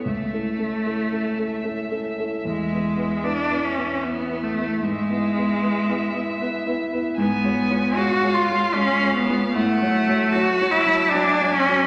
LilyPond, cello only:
\new Staff \with { instrumentName = "Cello" } { \time 3/4 \key e \mixolydian \tempo 4 = 76 a2~ a8 r8 | gis4 d'8 cis'8 b8 a8 | gis2~ gis8 r8 | \key fis \minor b4 fis'8 eis'8 cis'8 b8 |
a4 fis'8 e'8 d'8 cis'8 | }